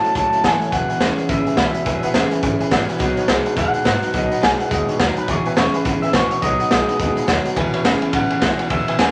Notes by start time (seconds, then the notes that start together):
Already playing: A2 F#3 A5
0.04 F#3 A3 C#4 A4 C#5 E5 A5, closed hi-hat
0.15 C#2 A2 F#3 A3 C#4 A4 C#5 E5 A5, kick, closed hi-hat
0.32 F#3 A3 C#4 A4 C#5 E5 A5, muted upright bass stroke, closed hi-hat
0.44 F#1 A2 E3 F#3 A3 C#4 A4 C#5 E5 G#5, kick, snare, closed hi-hat
0.60 F#3 A3 C#4 A4 C#5 E5 G#5, closed hi-hat
0.71 E1 E2 B2 E3 B3 C#4 G#4 B4 E5 F#5 G#5, kick, closed hi-hat
0.88 B3 C#4 G#4 B4 E5 G#5, muted upright bass stroke, closed hi-hat
1.00 E1 E2 C#3 E3 B3 C#4 G#4 B4 C#5 E5 G#5, snare, closed hi-hat
1.17 B3 C#4 G#4 B4 E5 F#5, muted upright bass stroke, closed hi-hat
1.28 A1 E2 C#3 E3 B3 C#4 G#4 B4 E5 B5, kick, closed hi-hat
1.46 B3 C#4 G#4 B4 E5 G#5, muted upright bass stroke, closed hi-hat
1.56 C#2 E2 B2 E3 B3 C#4 G#4 B4 E5 B5, kick, snare, closed hi-hat
1.74 B3 C#4 G#4 B4 E5 B5, muted upright bass stroke, closed hi-hat
1.85 E1 E2 B2 E3 B3 C#4 G#4 B4 E5 G#5, kick, closed hi-hat
2.02 B3 C#4 G#4 B4 E5 F#5, muted upright bass stroke, closed hi-hat
2.14 E1 E2 C#3 E3 B3 C#4 G#4 B4 E5 F#5, snare, closed hi-hat
2.31 B3 C#4 G#4 B4 E5 G#5, muted upright bass stroke, closed hi-hat
2.42 G#1 E2 C#3 E3 B3 C#4 G#4 B4 E5 G#5, kick, closed hi-hat
2.59 B3 C#4 G#4 B4 E5 G#5, closed hi-hat
2.71 G#1 E2 B2 E3 B3 C#4 G#4 B4 E5 F#5, kick, snare, closed hi-hat
2.87 B3 C#4 G#4 B4 E5 G#5, snare, closed hi-hat
2.98 B1 B2 F#3 B3 D#4 G#4 B4 D#5 F#5, kick, closed hi-hat
3.16 B3 D#4 G#4 B4 C#5 D#5 F#5, closed hi-hat
3.28 B1 B2 F#3 G#3 B3 D#4 G#4 B4 G#5, snare, closed hi-hat
3.45 B3 D#4 G#4 B4 D#5 G#5, closed hi-hat
3.56 E2 B2 F#3 G#3 B3 D#4 G#4 B4 D#5 F#5, kick, closed hi-hat
3.73 B3 D#4 G#4 B4 D#5 F#5, muted upright bass stroke, closed hi-hat
3.85 G#2 B2 F#3 B3 G#4 B4 D#5 F#5, kick, snare, closed hi-hat
4.02 B3 D#4 G#4 B4 D#5 F#5, muted upright bass stroke, snare, closed hi-hat
4.13 B1 B2 F#3 B3 D#4 G#4 B4 D#5 F#5, kick, closed hi-hat
4.30 B3 D#4 G#4 B4 D#5 F#5, closed hi-hat
4.41 B1 B2 F#3 G#3 B3 D#4 G#4 B4 G#5, snare, closed hi-hat
4.58 B3 D#4 G#4 B4 D#5 F#5 G#5, muted upright bass stroke, closed hi-hat
4.70 D#2 B2 F#3 G#3 B3 D#4 G#4 B4 D#5 F#5, kick, closed hi-hat
4.87 B3 D#4 G#4 B4 C#5 D#5 F#5, muted upright bass stroke, closed hi-hat
4.99 D#2 B2 F#3 B3 D#4 G#4 B4 D#5 F#5, kick, snare, closed hi-hat
5.15 B3 D#4 G#4 B4 D#5 G#5, muted upright bass stroke, closed hi-hat
5.28 E1 E2 B2 E3 B3 C#4 G#4 B4 C#5 E5 G#5, kick, closed hi-hat
5.45 B3 C#4 G#4 B4 E5 G#5, muted upright bass stroke, closed hi-hat
5.56 E1 E2 C#3 E3 B3 C#4 G#4 B4 C#5 E5 G#5, snare, closed hi-hat
5.73 B3 C#4 G#4 B4 E5 G#5, muted upright bass stroke, closed hi-hat
5.85 A1 E2 C#3 E3 B3 C#4 G#4 B4 E5 F#5, kick, closed hi-hat
6.02 B3 C#4 G#4 B4 E5 G#5, muted upright bass stroke, closed hi-hat
6.13 A#1 E2 B2 E3 B3 C#4 G#4 B4 C#5 E5 G#5, kick, snare, closed hi-hat
6.30 B3 C#4 G#4 B4 C#5 E5 F#5, muted upright bass stroke, closed hi-hat
6.42 B1 B2 F#3 B3 D#4 G#4 B4 D#5 F#5, kick, closed hi-hat
6.59 B3 D#4 G#4 B4 D#5 F#5, closed hi-hat
6.70 B1 B2 F#3 G#3 B3 D#4 G#4 B4, snare, closed hi-hat
6.88 B3 D#4 G#4 B4 D#5 F#5, muted upright bass stroke, closed hi-hat
6.99 D#2 B2 F#3 G#3 B3 D#4 G#4 B4 D#5 F#5, kick, closed hi-hat
7.16 B3 D#4 G#4 B4 D#5 F#5, muted upright bass stroke, closed hi-hat
7.27 D#2 B2 F#3 B3 D#4 G#4 B4 D#5 F#5, kick, snare, closed hi-hat
7.44 B3 D#4 G#4 B4 D#5 F#5, muted upright bass stroke, closed hi-hat
7.56 E1 E2 B2 E3 B3 C#4 G#4 B4 E5 G#5, kick, ride
7.73 B3 C#4 G#4 B4 C#5 E5 B5, muted upright bass stroke, ride
7.84 E1 E2 C#3 E3 B3 C#4 G#4 B4 E5 G#5, snare, ride
8.02 B3 C#4 G#4 B4 E5 G#5, muted upright bass stroke, ride
8.13 A1 E2 C#3 E3 B3 C#4 G#4 B4 E5 F#5 G#5, kick, ride
8.30 B3 C#4 G#4 B4 E5 G#5, muted upright bass stroke, ride
8.42 C#2 E2 B2 E3 B3 C#4 G#4 B4 E5 G#5, kick, snare, ride
8.59 B3 C#4 G#4 B4 E5 G#5, snare, ride
8.69 E1 E2 B2 E3 B3 C#4 G#4 B4 E5 G#5, kick, ride
8.87 B3 C#4 G#4 B4 E5 G#5, ride
8.98 E1 E2 C#3 E3 B3 C#4 G#4 B4 F#5 G#5, snare, ride